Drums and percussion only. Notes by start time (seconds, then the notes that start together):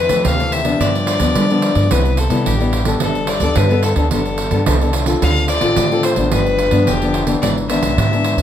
0.09 pandeiro
0.25 pandeiro
0.40 pandeiro
0.52 pandeiro
0.65 pandeiro
0.81 pandeiro
0.95 pandeiro
1.07 pandeiro
1.20 pandeiro
1.35 pandeiro
1.50 pandeiro
1.62 pandeiro
1.75 pandeiro
1.91 pandeiro
2.05 pandeiro
2.17 pandeiro
2.30 pandeiro
2.46 pandeiro
2.61 pandeiro
2.73 pandeiro
2.85 pandeiro
3.00 pandeiro
3.15 pandeiro
3.27 pandeiro
3.40 pandeiro
3.56 pandeiro
3.71 pandeiro
3.83 pandeiro
3.96 pandeiro
4.11 pandeiro
4.25 pandeiro
4.38 pandeiro
4.51 pandeiro
4.66 pandeiro
4.81 pandeiro
4.93 pandeiro
5.06 pandeiro
5.22 pandeiro
5.36 pandeiro
5.48 pandeiro
5.61 pandeiro
5.76 pandeiro
5.91 pandeiro
6.03 pandeiro
6.16 pandeiro
6.32 pandeiro
6.46 pandeiro
6.58 pandeiro
6.71 pandeiro
6.87 pandeiro
7.02 pandeiro
7.14 pandeiro
7.27 pandeiro
7.43 pandeiro
7.58 pandeiro
7.70 pandeiro
7.83 pandeiro
7.98 pandeiro
8.13 pandeiro
8.24 pandeiro
8.38 pandeiro